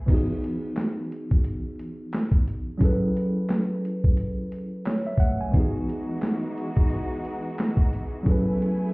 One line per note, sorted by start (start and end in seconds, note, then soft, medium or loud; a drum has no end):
0.06 2.76 E3 medium
0.06 2.77 B3 medium
0.06 2.78 D#4 medium
0.06 kick loud
0.06 closed hi-hat loud
0.06 crash loud
0.12 2.79 F#4 medium
0.12 2.80 G#4 medium
0.44 closed hi-hat medium
0.76 snare loud
0.76 clap loud
0.76 closed hi-hat loud
1.12 closed hi-hat medium
1.31 kick loud
1.44 closed hi-hat medium
1.79 closed hi-hat medium
2.13 snare loud
2.13 clap loud
2.13 closed hi-hat medium
2.31 kick loud
2.48 closed hi-hat medium
2.78 5.48 F#3 medium
2.78 5.49 C#4 medium
2.78 5.49 E4 medium
2.78 kick loud
2.78 closed hi-hat loud
2.82 5.50 G#4 medium
2.82 5.51 A4 medium
2.82 5.52 B4 medium
3.17 closed hi-hat medium
3.49 snare loud
3.49 clap loud
3.49 closed hi-hat loud
3.85 closed hi-hat medium
4.04 kick loud
4.17 closed hi-hat medium
4.52 closed hi-hat medium
4.85 5.05 C#5 medium
4.85 snare loud
4.85 clap loud
4.85 closed hi-hat medium
5.07 5.19 E5 medium
5.18 5.39 F#5 medium
5.18 kick loud
5.18 closed hi-hat medium
5.41 5.73 G#5 medium
5.52 8.21 E3 medium
5.52 8.23 E3 medium
5.52 8.23 G#3 medium
5.52 8.22 B3 medium
5.52 8.23 D#4 medium
5.52 8.23 F#4 medium
5.52 kick loud
5.52 closed hi-hat medium
5.57 8.24 F#4 medium
5.57 8.25 G#4 medium
5.89 closed hi-hat medium
6.22 snare loud
6.22 clap medium
6.22 closed hi-hat loud
6.58 closed hi-hat medium
6.77 kick loud
6.90 closed hi-hat medium
7.25 closed hi-hat medium
7.58 snare loud
7.58 clap loud
7.58 closed hi-hat medium
7.77 kick loud
7.93 closed hi-hat medium
8.23 8.94 F#3 medium
8.23 8.94 A3 medium
8.23 8.94 B3 medium
8.23 8.94 C#4 medium
8.23 8.94 E4 medium
8.23 8.94 G#5 medium
8.23 kick loud
8.23 closed hi-hat loud
8.28 8.94 G#4 medium
8.28 8.94 A4 medium
8.28 8.94 B4 medium
8.62 closed hi-hat medium